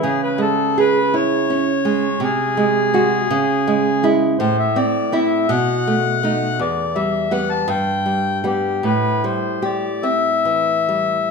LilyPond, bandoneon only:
\new Staff \with { instrumentName = "Bandoneon" } { \time 6/8 \key cis \minor \tempo 4. = 54 gis'16 b'16 a'8 b'8 cis''4. | gis'2~ gis'8 r8 | \key a \dorian c''16 e''16 d''8 e''8 fis''4. | d''8 e''8 fis''16 a''16 g''4 g'8 |
b'8 c''8 d''8 e''4. | }